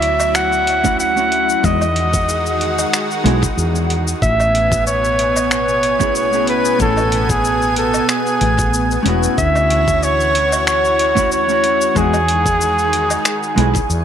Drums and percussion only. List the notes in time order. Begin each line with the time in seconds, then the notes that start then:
0.02 closed hi-hat
0.20 low woodblock, shaker
0.35 finger snap, shaker
0.53 shaker
0.67 closed hi-hat
0.85 kick, shaker
1.00 shaker
1.17 shaker
1.32 closed hi-hat
1.49 shaker
1.64 kick, shaker
1.81 low woodblock, shaker
1.96 closed hi-hat
2.14 kick, shaker
2.29 shaker
2.46 shaker
2.61 closed hi-hat
2.79 low woodblock, shaker
2.93 finger snap, shaker
3.11 shaker
3.26 closed hi-hat
3.43 kick, shaker
3.58 shaker
3.75 shaker
3.90 closed hi-hat
4.08 shaker
4.22 kick, shaker
4.40 low woodblock, shaker
4.55 closed hi-hat
4.72 kick, shaker
4.87 shaker
5.04 shaker
5.19 closed hi-hat
5.36 low woodblock, shaker
5.51 finger snap, shaker
5.69 shaker
5.83 closed hi-hat
6.00 kick, shaker
6.15 shaker
6.33 shaker
6.47 closed hi-hat
6.65 shaker
6.80 kick, shaker
6.97 low woodblock, shaker
7.12 closed hi-hat
7.30 kick, shaker
7.44 shaker
7.62 shaker
7.76 closed hi-hat
7.94 low woodblock, shaker
8.09 finger snap, shaker
8.27 shaker
8.41 closed hi-hat
8.59 kick, shaker
8.74 shaker
8.91 shaker
9.06 closed hi-hat
9.23 shaker
9.38 kick, shaker
9.56 low woodblock, shaker
9.70 closed hi-hat
9.88 kick, shaker
10.03 shaker
10.20 shaker
10.35 closed hi-hat
10.52 low woodblock, shaker
10.67 finger snap, shaker
10.85 shaker
10.99 closed hi-hat
11.17 kick, shaker
11.32 shaker
11.49 shaker
11.64 closed hi-hat
11.81 shaker
11.96 kick, shaker
12.13 low woodblock, shaker
12.28 closed hi-hat
12.46 kick, shaker
12.61 shaker
12.79 shaker
12.93 closed hi-hat
13.10 low woodblock, shaker
13.25 finger snap, shaker
13.43 shaker
13.58 closed hi-hat
13.75 kick, shaker
13.90 shaker